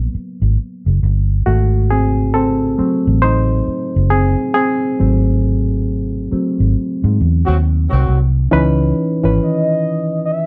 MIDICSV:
0, 0, Header, 1, 6, 480
1, 0, Start_track
1, 0, Tempo, 882353
1, 788, Time_signature, 4, 2, 24, 8
1, 5692, End_track
2, 0, Start_track
2, 0, Title_t, "Soft synth lead"
2, 0, Program_c, 0, 80
2, 5128, Note_on_c, 0, 75, 80
2, 5548, Note_off_c, 0, 75, 0
2, 5578, Note_on_c, 0, 75, 60
2, 5612, Note_on_c, 0, 76, 76
2, 5620, Note_off_c, 0, 75, 0
2, 5692, Note_off_c, 0, 76, 0
2, 5692, End_track
3, 0, Start_track
3, 0, Title_t, "Reed electric piano"
3, 0, Program_c, 1, 4
3, 0, Control_c, 1, 64, 127
3, 0, Note_on_c, 1, 54, 56
3, 0, Note_on_c, 1, 58, 52
3, 0, Note_on_c, 1, 59, 62
3, 794, Note_on_c, 1, 66, 79
3, 795, Control_c, 1, 64, 0
3, 796, Note_off_c, 1, 54, 0
3, 797, Note_off_c, 1, 58, 0
3, 798, Note_on_c, 1, 57, 66
3, 799, Note_off_c, 1, 59, 0
3, 876, Control_c, 1, 64, 127
3, 1017, Note_off_c, 1, 57, 0
3, 1036, Note_on_c, 1, 68, 83
3, 1038, Note_off_c, 1, 66, 0
3, 1041, Note_on_c, 1, 60, 69
3, 1258, Note_off_c, 1, 60, 0
3, 1272, Note_on_c, 1, 69, 97
3, 1279, Note_off_c, 1, 68, 0
3, 1280, Note_on_c, 1, 60, 79
3, 1511, Note_off_c, 1, 60, 0
3, 1511, Note_on_c, 1, 54, 50
3, 1513, Note_on_c, 1, 57, 45
3, 1517, Note_on_c, 1, 60, 61
3, 1751, Note_on_c, 1, 72, 108
3, 1762, Note_on_c, 1, 63, 82
3, 1764, Note_off_c, 1, 69, 0
3, 1852, Note_off_c, 1, 54, 0
3, 1853, Note_off_c, 1, 57, 0
3, 1855, Note_off_c, 1, 60, 0
3, 2213, Note_off_c, 1, 63, 0
3, 2232, Note_on_c, 1, 68, 101
3, 2240, Note_on_c, 1, 60, 68
3, 2244, Note_off_c, 1, 72, 0
3, 2453, Note_off_c, 1, 68, 0
3, 2458, Note_off_c, 1, 60, 0
3, 2471, Note_on_c, 1, 68, 92
3, 2480, Note_on_c, 1, 60, 73
3, 2713, Note_on_c, 1, 54, 51
3, 2714, Note_off_c, 1, 60, 0
3, 2717, Note_on_c, 1, 57, 47
3, 2721, Note_on_c, 1, 60, 52
3, 3409, Note_off_c, 1, 54, 0
3, 3411, Note_off_c, 1, 57, 0
3, 3413, Note_off_c, 1, 60, 0
3, 3436, Note_on_c, 1, 54, 41
3, 3441, Note_on_c, 1, 57, 38
3, 3441, Note_on_c, 1, 60, 48
3, 3650, Note_off_c, 1, 54, 0
3, 3653, Note_off_c, 1, 57, 0
3, 3653, Note_off_c, 1, 60, 0
3, 4127, Note_off_c, 1, 68, 0
3, 4631, Note_on_c, 1, 52, 99
3, 4633, Note_on_c, 1, 61, 84
3, 4634, Control_c, 1, 64, 0
3, 4637, Note_on_c, 1, 63, 84
3, 4640, Note_on_c, 1, 71, 112
3, 4741, Control_c, 1, 64, 127
3, 4975, Note_off_c, 1, 52, 0
3, 4976, Note_off_c, 1, 61, 0
3, 4978, Note_off_c, 1, 63, 0
3, 4980, Note_off_c, 1, 71, 0
3, 5024, Note_on_c, 1, 52, 63
3, 5025, Note_on_c, 1, 61, 59
3, 5030, Note_on_c, 1, 51, 64
3, 5032, Note_on_c, 1, 71, 65
3, 5692, Note_off_c, 1, 51, 0
3, 5692, Note_off_c, 1, 52, 0
3, 5692, Note_off_c, 1, 61, 0
3, 5692, Note_off_c, 1, 71, 0
3, 5692, End_track
4, 0, Start_track
4, 0, Title_t, "Horn section"
4, 0, Program_c, 2, 61
4, 4057, Note_on_c, 2, 51, 61
4, 4057, Note_on_c, 2, 54, 71
4, 4057, Note_on_c, 2, 60, 74
4, 4057, Note_on_c, 2, 66, 77
4, 4114, Note_off_c, 2, 54, 0
4, 4114, Note_off_c, 2, 60, 0
4, 4114, Note_off_c, 2, 66, 0
4, 4115, Note_off_c, 2, 51, 0
4, 4293, Note_on_c, 2, 54, 68
4, 4293, Note_on_c, 2, 66, 74
4, 4294, Note_on_c, 2, 51, 72
4, 4294, Note_on_c, 2, 60, 66
4, 4456, Note_off_c, 2, 51, 0
4, 4456, Note_off_c, 2, 54, 0
4, 4456, Note_off_c, 2, 60, 0
4, 4456, Note_off_c, 2, 66, 0
4, 5692, End_track
5, 0, Start_track
5, 0, Title_t, "Fingered electric bass"
5, 0, Program_c, 3, 33
5, 227, Note_on_c, 3, 32, 88
5, 303, Note_off_c, 3, 32, 0
5, 469, Note_on_c, 3, 30, 82
5, 544, Note_off_c, 3, 30, 0
5, 560, Note_on_c, 3, 31, 92
5, 769, Note_off_c, 3, 31, 0
5, 798, Note_on_c, 3, 32, 93
5, 1491, Note_off_c, 3, 32, 0
5, 1671, Note_on_c, 3, 33, 89
5, 1960, Note_off_c, 3, 33, 0
5, 2155, Note_on_c, 3, 30, 87
5, 2362, Note_off_c, 3, 30, 0
5, 2724, Note_on_c, 3, 32, 83
5, 3414, Note_off_c, 3, 32, 0
5, 3591, Note_on_c, 3, 32, 77
5, 3665, Note_off_c, 3, 32, 0
5, 3829, Note_on_c, 3, 44, 103
5, 3904, Note_off_c, 3, 44, 0
5, 3920, Note_on_c, 3, 40, 90
5, 4049, Note_off_c, 3, 40, 0
5, 4070, Note_on_c, 3, 39, 89
5, 4279, Note_off_c, 3, 39, 0
5, 4311, Note_on_c, 3, 36, 86
5, 4385, Note_off_c, 3, 36, 0
5, 4398, Note_on_c, 3, 36, 80
5, 4608, Note_off_c, 3, 36, 0
5, 4639, Note_on_c, 3, 37, 90
5, 4848, Note_off_c, 3, 37, 0
5, 5027, Note_on_c, 3, 32, 73
5, 5103, Note_off_c, 3, 32, 0
5, 5692, End_track
6, 0, Start_track
6, 0, Title_t, "Muted fingered electric bass strokes"
6, 79, Note_on_c, 9, 29, 46
6, 134, Note_off_c, 9, 29, 0
6, 1521, Note_on_c, 9, 29, 43
6, 1575, Note_off_c, 9, 29, 0
6, 2000, Note_on_c, 9, 29, 46
6, 2054, Note_off_c, 9, 29, 0
6, 3441, Note_on_c, 9, 29, 40
6, 3495, Note_off_c, 9, 29, 0
6, 5692, End_track
0, 0, End_of_file